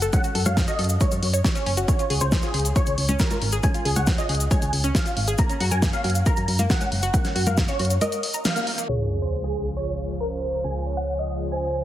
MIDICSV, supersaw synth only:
0, 0, Header, 1, 2, 480
1, 0, Start_track
1, 0, Key_signature, -5, "major"
1, 0, Tempo, 437956
1, 144, Time_signature, 4, 2, 24, 8
1, 12978, End_track
2, 0, Start_track
2, 0, Title_t, "Supersaw synth"
2, 0, Program_c, 0, 81
2, 142, Note_on_c, 0, 78, 103
2, 429, Note_off_c, 0, 78, 0
2, 503, Note_on_c, 0, 77, 89
2, 694, Note_off_c, 0, 77, 0
2, 742, Note_on_c, 0, 75, 97
2, 1029, Note_off_c, 0, 75, 0
2, 1102, Note_on_c, 0, 73, 94
2, 1485, Note_off_c, 0, 73, 0
2, 1583, Note_on_c, 0, 73, 94
2, 1965, Note_off_c, 0, 73, 0
2, 2063, Note_on_c, 0, 73, 100
2, 2350, Note_off_c, 0, 73, 0
2, 2423, Note_on_c, 0, 72, 89
2, 2614, Note_off_c, 0, 72, 0
2, 2663, Note_on_c, 0, 68, 96
2, 2950, Note_off_c, 0, 68, 0
2, 3024, Note_on_c, 0, 73, 100
2, 3406, Note_off_c, 0, 73, 0
2, 3503, Note_on_c, 0, 70, 97
2, 3885, Note_off_c, 0, 70, 0
2, 3983, Note_on_c, 0, 80, 103
2, 4270, Note_off_c, 0, 80, 0
2, 4343, Note_on_c, 0, 78, 89
2, 4534, Note_off_c, 0, 78, 0
2, 4582, Note_on_c, 0, 75, 99
2, 4869, Note_off_c, 0, 75, 0
2, 4942, Note_on_c, 0, 80, 97
2, 5325, Note_off_c, 0, 80, 0
2, 5422, Note_on_c, 0, 77, 93
2, 5805, Note_off_c, 0, 77, 0
2, 5902, Note_on_c, 0, 82, 104
2, 6189, Note_off_c, 0, 82, 0
2, 6263, Note_on_c, 0, 80, 92
2, 6454, Note_off_c, 0, 80, 0
2, 6502, Note_on_c, 0, 77, 96
2, 6789, Note_off_c, 0, 77, 0
2, 6862, Note_on_c, 0, 82, 99
2, 7245, Note_off_c, 0, 82, 0
2, 7342, Note_on_c, 0, 78, 97
2, 7725, Note_off_c, 0, 78, 0
2, 7822, Note_on_c, 0, 78, 100
2, 8109, Note_off_c, 0, 78, 0
2, 8183, Note_on_c, 0, 77, 92
2, 8374, Note_off_c, 0, 77, 0
2, 8422, Note_on_c, 0, 73, 95
2, 8709, Note_off_c, 0, 73, 0
2, 8783, Note_on_c, 0, 75, 95
2, 9165, Note_off_c, 0, 75, 0
2, 9263, Note_on_c, 0, 77, 93
2, 9645, Note_off_c, 0, 77, 0
2, 9743, Note_on_c, 0, 73, 96
2, 10030, Note_off_c, 0, 73, 0
2, 10104, Note_on_c, 0, 72, 85
2, 10295, Note_off_c, 0, 72, 0
2, 10344, Note_on_c, 0, 68, 93
2, 10630, Note_off_c, 0, 68, 0
2, 10703, Note_on_c, 0, 73, 94
2, 11085, Note_off_c, 0, 73, 0
2, 11183, Note_on_c, 0, 70, 89
2, 11565, Note_off_c, 0, 70, 0
2, 11663, Note_on_c, 0, 80, 96
2, 11950, Note_off_c, 0, 80, 0
2, 12023, Note_on_c, 0, 78, 89
2, 12214, Note_off_c, 0, 78, 0
2, 12263, Note_on_c, 0, 75, 90
2, 12550, Note_off_c, 0, 75, 0
2, 12623, Note_on_c, 0, 80, 96
2, 12978, Note_off_c, 0, 80, 0
2, 12978, End_track
0, 0, End_of_file